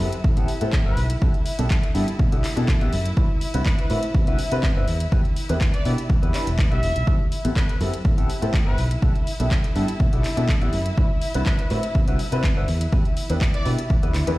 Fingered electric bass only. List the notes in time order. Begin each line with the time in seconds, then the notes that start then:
0.24 A2
0.37 A1
0.61 A2
0.86 G1
0.97 B1
1.22 B1
1.59 B1
1.95 G2
2.19 B2
2.32 B1
2.57 B2
2.81 A1
2.93 F#2
3.17 C2
3.54 C2
3.90 A2
4.15 C3
4.28 C2
4.52 C3
4.76 G1
4.88 E2
5.12 E2
5.50 E2
5.85 B2
6.10 E1
6.22 E2
6.47 E1
6.71 B1
6.83 E1
6.96 B1
7.07 A1
7.45 A1
7.81 F#2
8.05 A2
8.18 A1
8.42 A2
8.67 G1
8.78 B1
9.02 B1
9.40 B1
9.76 G2
10.00 B2
10.13 B1
10.37 B2
10.62 A1
10.73 F#2
10.98 C2
11.35 C2
11.71 A2
11.95 C3
12.08 C2
12.32 C3
12.57 G1
12.68 E2
12.92 E2
13.30 E2
13.66 B2
13.90 E1
14.03 E2
14.15 D2
14.27 E2